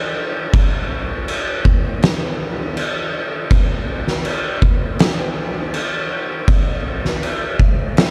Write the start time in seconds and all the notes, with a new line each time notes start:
0.53 kick, crash
1.28 crash
1.65 kick
2.02 snare, crash
2.77 crash
3.50 kick, crash
4.08 snare
4.25 crash
4.62 kick
4.99 snare, crash
5.74 crash
6.48 kick, crash
7.05 snare
7.23 crash
7.60 kick
7.97 snare, crash